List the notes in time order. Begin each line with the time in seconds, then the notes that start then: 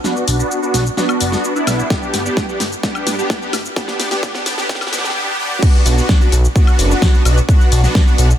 0.04 B3 D4 F#4, snare, shaker
0.17 shaker
0.27 B1, open hi-hat, shaker
0.39 B3 D4 F#4, shaker
0.51 shaker
0.62 B3 D4 F#4, shaker
0.74 B1, snare, open hi-hat, shaker
0.86 shaker
0.97 B3 D4 F#4, snare, shaker
1.09 high woodblock, shaker
1.21 F#1, open hi-hat, shaker
1.32 snare, shaker
1.44 shaker
1.55 B3 D4 E4, shaker
1.67 B1, snare, open hi-hat, high woodblock, shaker
1.79 shaker
1.90 B3 D4, kick, snare, shaker
2.03 shaker
2.14 G1, snare, open hi-hat, shaker
2.25 B3 D4 G4, shaker
2.37 kick, snare, shaker
2.49 B3 D4 G4, shaker
2.60 G1, snare, open hi-hat, shaker
2.72 shaker
2.83 B3 D4 G4, kick, snare, shaker
2.95 high woodblock, shaker
3.07 G2, snare, open hi-hat, shaker
3.18 B3 D4 G4, shaker
3.30 kick, snare, shaker
3.42 B3 D4 G4, shaker
3.53 G1, snare, open hi-hat, high woodblock, shaker
3.65 shaker
3.76 B3 D4 G4, kick, snare, shaker
3.88 snare, shaker
4.00 G1, snare, open hi-hat, shaker
4.11 B3 D4 G4, snare, open hi-hat, shaker
4.23 B3 D4 G4, kick, snare, shaker
4.35 snare, shaker
4.46 G1, snare, open hi-hat, shaker
4.58 B3 D4 G4, snare, shaker
4.69 B3 D4 G4, kick, snare, shaker
4.75 snare
4.81 snare, high woodblock, shaker
4.87 snare
4.93 G2 B3 D4 G4, snare, open hi-hat, shaker
4.98 snare
5.04 snare, shaker
5.10 snare
5.16 B3 D4 G4
5.39 B3 D4 G4
5.62 D4, kick, crash, shaker
5.75 shaker
5.86 B1, open hi-hat, shaker
5.97 B3 D4 F#4, shaker
6.09 kick, snare, shaker
6.21 B3 D4 F#4, shaker
6.32 B1, open hi-hat, shaker
6.45 shaker
6.56 B3 D4 F#4, kick, shaker
6.67 high woodblock, shaker
6.79 F#1, open hi-hat, shaker
6.91 shaker
7.02 kick, snare, shaker
7.15 shaker
7.25 B1 B3 D4 F#4, open hi-hat, high woodblock, shaker
7.38 shaker
7.49 B3 D4 F#4, kick, shaker
7.61 shaker
7.72 B1, open hi-hat, shaker
7.83 B3 D4 F#4, snare, shaker
7.95 kick, snare, shaker
8.07 B3 D4 F#4, shaker
8.18 B1, open hi-hat, shaker
8.31 shaker